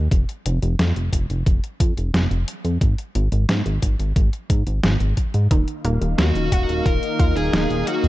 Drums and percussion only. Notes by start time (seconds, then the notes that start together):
0.11 kick, closed hi-hat
0.29 closed hi-hat
0.46 closed hi-hat
0.62 closed hi-hat
0.79 snare, closed hi-hat
0.96 closed hi-hat
1.13 kick, closed hi-hat
1.30 closed hi-hat
1.46 kick, closed hi-hat
1.64 closed hi-hat
1.80 kick, closed hi-hat
1.97 closed hi-hat
2.14 snare, closed hi-hat
2.31 closed hi-hat
2.48 closed hi-hat
2.65 closed hi-hat
2.81 kick, closed hi-hat
2.98 closed hi-hat
3.15 closed hi-hat
3.32 closed hi-hat
3.49 snare, closed hi-hat
3.66 closed hi-hat
3.82 kick, closed hi-hat
4.00 closed hi-hat
4.16 kick, closed hi-hat
4.33 closed hi-hat
4.50 kick, closed hi-hat
4.67 closed hi-hat
4.83 snare, closed hi-hat
5.00 closed hi-hat
5.17 kick, closed hi-hat
5.34 closed hi-hat
5.51 kick, closed hi-hat
5.68 closed hi-hat
5.85 closed hi-hat
6.02 closed hi-hat
6.18 snare, closed hi-hat
6.35 closed hi-hat
6.52 kick, closed hi-hat
6.69 closed hi-hat
6.86 kick, closed hi-hat
7.03 closed hi-hat
7.19 kick, closed hi-hat
7.36 closed hi-hat
7.53 snare, closed hi-hat
7.70 closed hi-hat
7.87 closed hi-hat
8.04 closed hi-hat